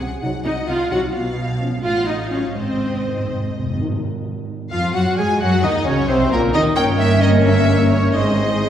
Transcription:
0.00 double bass section C2, violin section F#5
0.22 double bass section C2, cello section C3, french horn section F#3 D#4, violin section F#5
0.45 double bass section C2, cello section C3, viola section D#4, violin section D#5 F#5
0.67 double bass section C2, cello section C3, viola section F4, violin section F5 F#5
0.91 double bass section C2, cello section C3, french horn section F#3 D#4, viola section F#4, violin section F#5
1.14 double bass section B1, cello section B2, violin section F5
1.60 french horn section F3 C#4
1.84 double bass section A1, cello section A2, viola section F4, violin section F5 F#5
2.07 viola section D#4, violin section D#5
2.20 violin section F5
2.31 french horn section F#3 C#4, viola section C#4, violin section C#5
2.56 double bass section G#1, cello section G#2, timpani G#2, viola section C4, violin section C5 D#5
2.65 timpani G#2
2.73 timpani G#2
2.81 timpani G#2
2.89 timpani G#2
2.97 timpani G#2
3.05 timpani G#2, french horn section D#3 D#4
3.12 timpani G#2
3.20 timpani G#2
3.28 timpani G#2
3.36 timpani G#2
3.44 timpani G#2
3.51 timpani G#2
3.59 timpani G#2
3.67 timpani G#2
3.75 timpani G#2, french horn section D#3 D#4
3.82 timpani G#2
3.90 timpani G#2
4.71 double bass section F2, french horn section F3, cello section F3, viola section F4, clarinet F4, violin section F4 F5, flute section F5, oboe F5
4.94 double bass section F#2, french horn section F#3, cello section F#3, clarinet F#4, violin section F#4 F#5, viola section F#4, oboe F#5, flute section F#5
5.17 double bass section G#2, french horn section G#3, cello section G#3, clarinet G#4, viola section G#4, violin section G#4 G#5, oboe G#5, flute section G#5
5.41 double bass section F#2, french horn section F#3, cello section F#3, clarinet F#4, violin section F#4 F#5, viola section F#4, oboe F#5, flute section F#5
5.63 double bass section D#2, french horn section D#3, cello section D#3, clarinet D#4, violin section D#4 D#5, viola section D#4, oboe D#5, flute section D#5
5.85 double bass section C#2, french horn section C#3, cello section C#3, clarinet C#4, violin section C#4 C#5, viola section C#4, oboe C#5, flute section C#5
6.08 double bass section C2, french horn section C3, cello section C3, clarinet C4, viola section C4, violin section C4 C5, oboe C5, flute section C5
6.31 double bass section A#1, cello section A#2, french horn section A#2, clarinet A#3, violin section A#3 A#4, viola section A#3, oboe A#4, flute section A#4
6.53 double bass section D#2, cello section D#3, french horn section D#3, clarinet D#4, violin section D#4 D#5, viola section D#4, oboe D#5, flute section D#5
6.76 double bass section G1, cello section G2, french horn section A#3 C#4, viola section A#3 C#4, violin section C#4 A#4 G5, clarinet A#4, oboe C#5, flute section G5
6.99 violin section E5, flute section E5
7.22 violin section D#5, flute section D#5
7.45 flute section E5, violin section E5
7.91 flute section C#5, violin section C#5
8.15 double bass section G#1, cello section G#2, viola section G#3 D#4, french horn section G#3 C4, clarinet G#4, violin section G#4 C5 D#5, oboe C5, flute section D#5

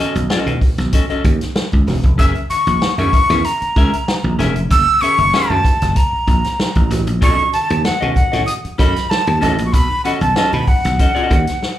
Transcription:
0.00 clean electric guitar C#4 F#4 A4 D#5
0.15 slap bass B1, closed hi-hat, high conga
0.30 clean electric guitar C#4 F#4 A4 D#5, muted slap bass stroke, snare
0.46 slap bass B2, closed hi-hat, high conga, low conga
0.61 kick, open hi-hat, low conga
0.78 slap bass B1, snare, closed hi-hat, high conga
0.93 clean electric guitar C#4 F#4 A4 D#5, kick, closed hi-hat
1.09 clean electric guitar C#4 F#4 A4 D#5, muted slap bass stroke, closed hi-hat, muted conga
1.24 slap bass D#2, kick, closed hi-hat, high conga
1.41 snare, closed hi-hat
1.56 snare
1.72 slap bass C#2, kick, closed hi-hat, muted conga, high conga
1.87 slap bass E1, snare, open hi-hat, low conga
2.03 slap bass F1, kick, closed hi-hat
2.18 slap bass F#1, clean electric guitar C#4 G#4 A#4 E5, flute E6, kick, closed hi-hat, muted conga
2.35 closed hi-hat
2.50 flute C#6, closed hi-hat, high conga
2.67 slap bass A#1, closed hi-hat, high conga
2.82 snare, muted conga
2.98 slap bass F#2, clean electric guitar C#4 G#4 A#4 E5, flute C#6, closed hi-hat, muted conga, high conga, low conga
3.13 kick, closed hi-hat, low conga
3.30 slap bass E2, clean electric guitar C#4 G#4 A#4 E5, snare, closed hi-hat, high conga
3.44 flute A#5, closed hi-hat, muted conga
3.61 muted slap bass stroke, closed hi-hat, muted conga
3.76 slap bass C#2, clean electric guitar C#4 G#4 A#4 E5, kick, closed hi-hat, high conga
3.93 closed hi-hat
4.08 snare, muted conga
4.23 slap bass A#1, muted conga, high conga
4.39 slap bass E1, clean electric guitar C#4 G#4 A#4 E5, snare, closed hi-hat, low conga
4.55 slap bass F1, closed hi-hat
4.70 slap bass F#1, flute E6, kick, closed hi-hat
4.87 closed hi-hat, muted conga
5.01 clean electric guitar C#4 G#4 A#4 E5, flute C#6, closed hi-hat, high conga
5.18 slap bass F#1, closed hi-hat, high conga
5.34 clean electric guitar C#4 G#4 A#4 E5, snare, muted conga
5.50 slap bass F#2, flute A5, muted conga, high conga, low conga
5.65 kick, closed hi-hat, low conga
5.82 slap bass F#1, snare, closed hi-hat, high conga
5.96 flute A#5, kick, closed hi-hat
6.13 muted slap bass stroke
6.27 slap bass A#1, kick, closed hi-hat, high conga
6.44 snare, closed hi-hat
6.60 snare
6.75 slap bass A1, kick, closed hi-hat, high conga
6.90 slap bass A1, snare, closed hi-hat, low conga
7.07 slap bass A#1, closed hi-hat
7.21 slap bass B1, clean electric guitar C#4 F#4 A4 D#5, flute C#6, kick, closed hi-hat, muted conga
7.39 closed hi-hat, muted conga
7.53 flute A5, closed hi-hat, high conga
7.70 slap bass D#2, closed hi-hat, high conga
7.85 flute F#5, muted slap bass stroke, snare
8.01 slap bass B2, clean electric guitar C#4 F#4 A4 D#5, closed hi-hat, muted conga, high conga, low conga
8.15 flute F#5, kick, closed hi-hat, low conga
8.32 slap bass A2, clean electric guitar C#4 F#4 A4 D#5, snare, closed hi-hat, high conga
8.46 flute D#6, closed hi-hat, muted conga
8.65 muted slap bass stroke, closed hi-hat, muted conga
8.78 slap bass F#2, clean electric guitar C#4 F#4 A4 D#5, flute B5, kick, closed hi-hat, high conga
8.96 snare, closed hi-hat
9.10 flute A5, snare
9.27 slap bass D#2, closed hi-hat, high conga
9.41 slap bass A1, clean electric guitar C#4 F#4 A4 D#5, flute A5, snare, closed hi-hat, low conga
9.58 slap bass A#1, closed hi-hat
9.66 flute C#6
9.73 slap bass B1, flute B5, kick, closed hi-hat, muted conga
9.90 muted conga
10.05 clean electric guitar C#4 F#4 A4 D#5, flute F#5, closed hi-hat, high conga
10.21 slap bass B1, flute A5, closed hi-hat, high conga
10.36 clean electric guitar C#4 F#4 A4 D#5, flute A5, muted slap bass stroke, snare, muted conga
10.53 slap bass B2, flute B5, closed hi-hat, muted conga, high conga, low conga
10.68 flute F#5, kick, open hi-hat, low conga
10.84 slap bass B1, snare, closed hi-hat, high conga
10.99 clean electric guitar C#4 F#4 A4 D#5, kick, closed hi-hat, muted conga
11.15 clean electric guitar C#4 F#4 A4 D#5, muted slap bass stroke, closed hi-hat
11.31 slap bass D#2, kick, closed hi-hat, high conga
11.47 snare, closed hi-hat
11.62 snare

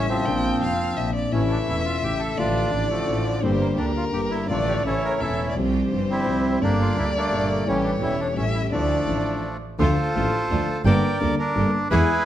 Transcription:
Already playing: grand piano A1 A2 C#3 G3 A3 E4, double bass A1, violin E5
0.09 bandoneon F3 C4
0.24 double bass A#1, grand piano A#1 A#2 C3 F3 A#3 D4, violin G5
0.59 double bass F1, grand piano F1 F2 C3 F3 A#3, violin F5
0.63 grand piano D4
0.95 double bass A#1, grand piano A#1 A#2 C3 F3 A#3, violin E5
0.99 grand piano D4
1.15 violin D5
1.30 double bass A1, grand piano A1 A2 C#3 E3 A3, bandoneon E3 A3 C#4, string section A3 C#4 E4, violin E5
1.34 grand piano E4
1.50 bandoneon D4
1.66 double bass E1, grand piano E1 E2 C#3 E3 A3 E4, string section A3 C#4 E4, bandoneon E4
1.85 bandoneon F4
2.01 double bass A1, grand piano A1 A2 C#3 E3 A3 E4, string section A3 C#4 E4, bandoneon G4
2.19 bandoneon A4
2.36 grand piano A1 A2 D3 F3 A3, double bass A1, string section F3 D4 E5, bandoneon D4 F4, violin D5
2.40 grand piano E5
2.71 double bass A1, grand piano A1 A2 D3 F3 A3, string section F3 D4 E4
2.75 grand piano E4
2.90 bandoneon D3 F3 A3
3.06 grand piano A1 A2 D3 F3 A3 E4, double bass A1, string section F3 D4 E4
3.41 double bass G1, grand piano G1 G2 D3 G3 A#3, bandoneon G3 C4, string section A#3 D4 G4, violin C5
3.45 grand piano G4
3.60 bandoneon A#3
3.76 grand piano D2 D3 G3 A#3, double bass D2, string section A#3 D4 G4, bandoneon D4, violin A#4
3.80 grand piano G4
3.97 bandoneon F4
4.11 grand piano G1 G2 D3 G3 A#3, double bass G1, string section A#3 D4 G4, bandoneon G4
4.16 grand piano G4
4.31 bandoneon E4
4.47 double bass A1, grand piano A1 A2 D3 F3 A3, string section A3 D4 F4, bandoneon F4, violin D5
4.51 bandoneon A3 D4, grand piano F4
4.67 bandoneon G4
4.82 double bass A1, grand piano A1 A2 C#3 E3 A3, string section A3 C#4 E4, bandoneon E4, violin C#5
4.86 bandoneon C#4 A4, grand piano E4
5.05 bandoneon A#4
5.18 grand piano E1 E2 C#3 E3 A3, double bass E1, string section A3 C#4 E4, bandoneon E4 A4, violin E5
5.22 bandoneon C#4, grand piano E4
5.49 violin D5
5.54 grand piano C2 C3 F3 G3 C4 G4, double bass C2, string section C4 F4 G4, violin C5
5.89 grand piano G1 G2 F3 G3 C4 G4, double bass G1, string section C4 F4 G4
6.10 bandoneon G3 C4 E4
6.24 grand piano C2 C3 F3 G3 C4 G4, double bass C2, string section F3 C4 G4
6.60 grand piano G1 G2 G3 A#3 D4, double bass G1, string section A#3 G4 A4, bandoneon A#3 D4 G4, violin D5
6.64 grand piano A4
6.81 bandoneon F4
6.94 grand piano D2 D3 G3 A#3 D4, double bass D2, string section A#3 G4 A4, bandoneon E4
7.17 bandoneon A3 A#3 D4
7.30 grand piano G1 G2 A#2 G3 D4 A4, double bass G1, string section G3 G4 A4
7.64 grand piano A1 A2 G3 C#4 E4 A4, double bass A1, bandoneon E3 G3 C#4, string section A3 C#4 G4, violin C#5
7.84 bandoneon D4
8.00 grand piano E1 E2 G3 C#4 E4 A4, double bass E1, string section A3 C#4 G4, bandoneon E4
8.20 bandoneon D4
8.34 grand piano A1 A2 G3 C#4 E4, double bass A1, string section A3 C#4 G4, bandoneon C#4, violin E5
8.38 grand piano A4
8.55 bandoneon E4
8.70 double bass D2, grand piano D2 D3 F3 D4 E4 A4, string section F3 D4 E4, bandoneon F3 A3 D4, violin D5
9.05 double bass A1, grand piano A1 A2 F3 D4 E4 A4, string section F3 D4 E4
9.78 grand piano D2 D3 F3 A3 D4 A4, double bass D2, string section A3 D4 F4, bandoneon F4 A4 C5
10.15 grand piano A1 A2 F3 A3 D4 A4, double bass A1, string section A3 D4 F4
10.50 grand piano D2 D3 F3 A3 D4 A4, double bass D2, string section A3 D4 F4
10.85 grand piano G1 G2 G3 A#3 D4 A4, double bass G1, string section A#3 G4 A4, bandoneon A#4 D5 G5
11.20 grand piano D2 D3 G3 A#3 D4 A4, double bass D2, string section A#3 G4 A4
11.39 bandoneon D4 A#4
11.56 grand piano G1 G2 G3 A#3 D4 A4, double bass G1, string section A#3 G4 A4
11.90 grand piano E2 E3 G#3 B3 G#4, double bass E2, string section B3 E4 G#4, bandoneon E4 G#4 B4

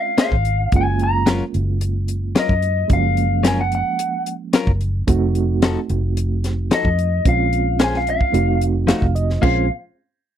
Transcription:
Already playing: reed electric piano G#3 C4 C#4 F4, clean electric guitar F5
0.18 clean electric guitar A#3 C#4 G#4 C5 F5, snare, closed hi-hat
0.31 fingered electric bass G#1, kick
0.45 closed hi-hat
0.72 fingered electric bass F#1, reed electric piano G#3 A#3 C#4 F4, kick, closed hi-hat
0.76 clean electric guitar G#5
0.99 closed hi-hat
1.04 clean electric guitar A#5
1.26 clean electric guitar F#3 C#4 F4 A#4, snare, closed hi-hat
1.54 fingered electric bass F#1, closed hi-hat
1.81 closed hi-hat
2.08 closed hi-hat
2.35 clean electric guitar F#3 C#4 F4 A#4 D#5, snare, closed hi-hat
2.49 fingered electric bass F#2, kick
2.62 closed hi-hat
2.88 fingered electric bass F#1, reed electric piano F3 G#3 A#3 C#4, kick, closed hi-hat
2.93 clean electric guitar F5
3.17 closed hi-hat
3.43 clean electric guitar F#3 C#4 F4 A#4, snare, closed hi-hat
3.48 clean electric guitar G#5
3.61 clean electric guitar F#5
3.72 clean electric guitar F#5, closed hi-hat
3.99 closed hi-hat
4.26 closed hi-hat
4.53 clean electric guitar F#3 C#4 F4 A#4, snare, closed hi-hat
4.67 fingered electric bass F#1, kick
4.81 closed hi-hat
5.07 fingered electric bass F1, reed electric piano A3 C4 D#4 F#4, kick, closed hi-hat
5.35 closed hi-hat
5.62 clean electric guitar F3 D#4 F#4 A4, snare, closed hi-hat
5.89 fingered electric bass F1, closed hi-hat
6.17 closed hi-hat
6.44 snare, closed hi-hat
6.71 clean electric guitar F3 D#4 F#4 A4 D#5, snare, closed hi-hat
6.85 fingered electric bass F2, kick
6.99 closed hi-hat
7.25 fingered electric bass A#1, reed electric piano G#3 C4 C#4 F4, clean electric guitar F5, kick, closed hi-hat
7.53 closed hi-hat
7.79 clean electric guitar A#3 C#4 G#4 C5, snare, closed hi-hat
7.84 clean electric guitar G#5
7.94 clean electric guitar F5, snare
8.07 clean electric guitar F5, closed hi-hat
8.21 kick
8.32 fingered electric bass F1, reed electric piano A3 C4 D#4 F#4, closed hi-hat
8.61 closed hi-hat
8.87 clean electric guitar F3 A3 D#4 F#4, reed electric piano F5, snare, closed hi-hat
9.02 fingered electric bass F1, kick
9.15 reed electric piano D#5, closed hi-hat
9.30 snare
9.42 fingered electric bass A#1, reed electric piano G#3 C4 C#4 F4, clean electric guitar A#3 C#4 G#4 C5 F5, kick, crash

